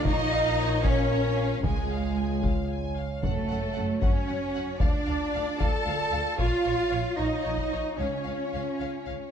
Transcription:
Already playing: F4
0.05 A#1 D#4 A#4 C#5 D#5, taiko
0.32 F5
0.58 C#5
0.84 C#4 C#5 F5, taiko
1.10 C#5
1.36 F5
1.63 C#2 C#3 G#3 F4 G#4 C#5 G#5, taiko
1.91 F5
2.17 G#5
2.43 F5, taiko
2.71 G#5
2.97 F5
3.23 F#2 A3 F#4 A4 F#5, taiko
3.50 F#2 F#5
3.75 F#2 F#5
4.02 F#2 C#4 C#5 F#5, taiko
4.27 F#2 F#5
4.54 F#2 F#5
4.80 D2 D4 F4 D5 F5, taiko
5.06 D2 F5
5.33 D2 F5
5.59 D2 A4 F5 A5, taiko
5.86 D2 F5
6.12 D2 F5
6.38 A#1 F4 C#5 F5, taiko
6.65 A#1 C#5
6.91 A#1 C#5
7.17 A#1 D#4 C#5 D#5
7.44 A#1 C#5
7.57 taiko
7.71 A#1 C#5
7.97 C#2 C#3 C#4 F4 C#5 F5
8.25 C#2 F5
8.53 C#2 F5
8.80 C#2 F5
9.06 C#2 F5

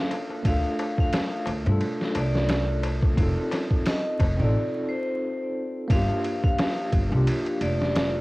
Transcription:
Already playing: A#3 D4 F4 A4 F5
0.11 ride, darbuka tek
0.30 darbuka tek
0.43 D2 A3 D4 F5, kick, ride, darbuka tek
0.48 F4 A4
0.79 ride, darbuka tek
0.98 F5, kick, darbuka tek
1.13 snare, ride, darbuka tek
1.46 D2, ride, darbuka tek
1.65 G2 A3 D4, ride, darbuka tek, darbuka dum
1.69 F4 A4
1.81 ride, darbuka tek
2.01 snare
2.15 C2 D5, ride, darbuka tek
2.35 snare, darbuka tek
2.49 snare, ride, darbuka tek
2.83 ride, darbuka tek
3.02 kick, darbuka tek
3.16 F1 C4 D#4, kick, ride, darbuka tek
3.20 F4 A4
3.51 snare, ride, darbuka tek
3.71 kick, darbuka tek
3.86 D#5, snare, open hi-hat, darbuka tek
4.20 F1, kick, ride, darbuka tek
4.37 A1 C4 D#4 D5, darbuka tek, darbuka dum
4.42 F4 A4
4.89 C5
5.88 G1 A#3 D4 F4 F5, kick, ride
5.93 F4 G4
6.24 ride
6.44 F5, kick
6.58 snare, ride
6.92 G1, kick, ride
7.10 C2 A#3 D4
7.14 F4 G4
7.27 ride
7.46 ride
7.61 F1 D5, ride
7.82 snare
7.95 snare, ride

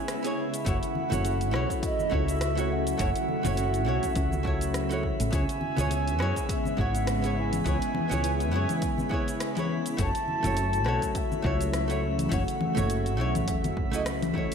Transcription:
Already playing: C#3 G#3 B3 E4 G#4 C#5 E5 G#5
0.08 cross-stick, closed hi-hat, shaker
0.23 B3 E4 G#4 C#5, closed hi-hat, shaker
0.54 closed hi-hat, shaker
0.65 F#1 F#3 A3 E4 F#4 C#5, kick, closed hi-hat, shaker
0.69 F#5
0.83 closed hi-hat, shaker
0.95 high conga
1.10 F#1 A3 E4 F#4 C#5, closed hi-hat, high conga, low conga, shaker
1.25 closed hi-hat, shaker
1.41 closed hi-hat, shaker
1.51 B1 A3 E4 F#4, cross-stick
1.55 C#5
1.70 kick, closed hi-hat, shaker
1.83 D#5, kick, closed hi-hat, shaker
1.99 high conga, shaker
2.10 C#2 A3 E4 F#4 C#5 E5, kick
2.28 closed hi-hat, shaker
2.41 cross-stick, closed hi-hat, shaker
2.55 A3 E4 F#4, closed hi-hat, shaker
2.59 C#5
2.72 F#5
2.87 closed hi-hat, shaker
2.97 F#1 A3 E4 F#4 C#5, kick, closed hi-hat, shaker
3.16 closed hi-hat, shaker
3.29 high conga
3.43 F#1 A3 E4 F#4 C#5, closed hi-hat, high conga, low conga, shaker
3.57 closed hi-hat, shaker
3.74 closed hi-hat, shaker
3.85 B1 A3 E4 F#4 C#5
4.03 kick, closed hi-hat, high conga, shaker
4.16 C#2, kick, closed hi-hat, shaker
4.32 high conga, shaker
4.43 A3 E4 F#4, kick
4.47 C#5
4.61 closed hi-hat, shaker
4.74 cross-stick, closed hi-hat, shaker
4.89 A3 E4 F#4 C#5, closed hi-hat, shaker
5.03 kick
5.20 A1, closed hi-hat, shaker
5.31 C#2 G#3 B3 E4 G#4 G#5, kick, closed hi-hat, shaker
5.35 C#5
5.49 closed hi-hat, shaker
5.61 high conga
5.76 C#2 B3 E4 G#4 C#5, closed hi-hat, high conga, low conga, shaker
5.91 closed hi-hat, shaker
6.08 closed hi-hat, shaker
6.19 F#2 B3 E4 G#4 C#5, cross-stick
6.36 kick, closed hi-hat, shaker
6.49 E5, kick, closed hi-hat, shaker
6.65 high conga, shaker
6.77 G#1 B3 E4 G#4 C#5 F#5, kick
6.95 closed hi-hat, shaker
7.07 cross-stick, closed hi-hat, shaker
7.22 B3 E4 G#4 C#5, closed hi-hat, shaker
7.38 G#5
7.53 closed hi-hat, low conga, shaker
7.64 C#2 B3 E4 G#4, kick, closed hi-hat, shaker
7.68 C#5
7.82 closed hi-hat, shaker
7.95 high conga, low conga
8.09 C#2 B3 E4 G#4, closed hi-hat, high conga, low conga, shaker
8.14 C#5
8.24 closed hi-hat, shaker
8.40 closed hi-hat, shaker
8.51 F#2 B3 E4 G#4
8.56 C#5
8.69 closed hi-hat, low conga, shaker
8.82 kick, closed hi-hat, shaker
8.98 high conga, shaker
9.09 B3 E4 G#4, kick
9.14 C#5
9.28 closed hi-hat, shaker
9.40 cross-stick, closed hi-hat, shaker
9.55 B3 E4 G#4 C#5, closed hi-hat, low conga, shaker
9.86 closed hi-hat, shaker
9.97 F#1 C#3 F#3 A3 E4 F#4, kick, closed hi-hat, shaker
10.01 C#5 A5
10.15 closed hi-hat, shaker
10.28 high conga
10.43 F#1 A3 E4 F#4, closed hi-hat, high conga, low conga, shaker
10.47 C#5
10.57 closed hi-hat, shaker
10.73 closed hi-hat, shaker
10.84 B1 A3 E4 F#4 C#5, cross-stick
11.02 kick, closed hi-hat, shaker
11.15 E5, kick, closed hi-hat, shaker
11.32 high conga, shaker
11.42 C#2 A3 E4 F#4 C#5, kick
11.61 closed hi-hat, shaker
11.73 cross-stick, closed hi-hat, shaker
11.88 A3 E4 F#4 C#5, closed hi-hat, shaker
12.19 closed hi-hat, low conga, shaker
12.29 F#1 A3 E4 F#4 E5 F#5, kick, closed hi-hat, shaker
12.33 C#5
12.48 closed hi-hat, shaker
12.61 high conga, low conga
12.75 F#1 A3 E4 F#4 C#5, closed hi-hat, high conga, low conga, shaker
12.90 closed hi-hat, shaker
13.06 closed hi-hat, shaker
13.17 B1 A3 E4 F#4
13.21 C#5
13.35 kick, closed hi-hat, high conga, low conga, shaker
13.48 E1, kick, closed hi-hat, shaker
13.64 closed hi-hat, high conga, shaker
13.77 F#1, kick
13.92 C#2 A3 E4 F#4 D#5, closed hi-hat, shaker
14.06 cross-stick, closed hi-hat, shaker
14.22 closed hi-hat, low conga, shaker
14.34 A3 E4 F#4 C#5, kick

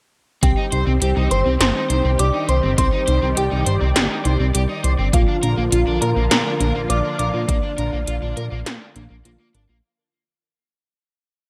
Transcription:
0.43 C2 D#3 G3 C4 G4 G5, kick, closed hi-hat
0.57 D#4
0.72 C2 D#4 C5, closed hi-hat
0.87 C2 C4
1.01 C2 G4, closed hi-hat
1.16 C2 D#4
1.31 G1 C5 C6, closed hi-hat
1.45 C2 C4
1.60 G1 C4 C5 C6, snare, closed hi-hat
1.75 D#4
1.90 C2 D#4 C5, closed hi-hat
2.04 C2 C4
2.19 C2 G4 D5 D6, closed hi-hat
2.34 D#4
2.48 C2 C5 C6, closed hi-hat
2.63 G1 C4
2.78 C2 C4 C5 D5 C6, kick, closed hi-hat
2.93 D#4
3.07 C2 D#4 C5, closed hi-hat
3.22 C2 C4
3.37 C2 G4 G5, closed hi-hat
3.51 C2 D#4
3.66 G1 C5, closed hi-hat
3.81 C2 C4
3.96 G1 C4, snare, closed hi-hat
4.10 D#4
4.25 C2 D#4 C5, closed hi-hat
4.40 C2 C4
4.54 C2 G4, closed hi-hat
4.69 D#4
4.84 C2 C5, closed hi-hat
4.99 G1 C4
5.13 A#1 D3 F3 A#3 F4 F5, kick, closed hi-hat
5.28 D4
5.43 A#1 D4 A#4, closed hi-hat
5.57 A#1 A#3
5.72 A#1 F4, closed hi-hat
5.87 A#1 D4
6.01 A#2 A#4 A#5, closed hi-hat
6.16 A#1 A#3
6.30 A#2 A#3 A#4 A#5, snare, closed hi-hat
6.46 D4
6.60 A#1 D4 A#4, closed hi-hat
6.75 A#1 A#3
6.89 A#1 F4 D5 D6, closed hi-hat
7.05 D4
7.19 A#1 A#4 D5 D6, closed hi-hat
7.34 A#2 A#3
7.48 A#1 A#3, kick, closed hi-hat
7.63 D4
7.78 A#1 D4 A#4, closed hi-hat
7.93 A#1 A#3
8.07 A#1 F4, closed hi-hat
8.22 A#1 D4
8.37 A#2 A#4, closed hi-hat
8.51 A#1 A#3
8.66 A#2 A#3, snare, closed hi-hat
8.81 D4
8.96 A#1 A#3 D4, closed hi-hat
9.10 A#1 A#3
9.25 A#1 A#3 F4, closed hi-hat
9.40 A#3
9.54 G#1 D4 A#4, closed hi-hat
9.69 A#1 A#3

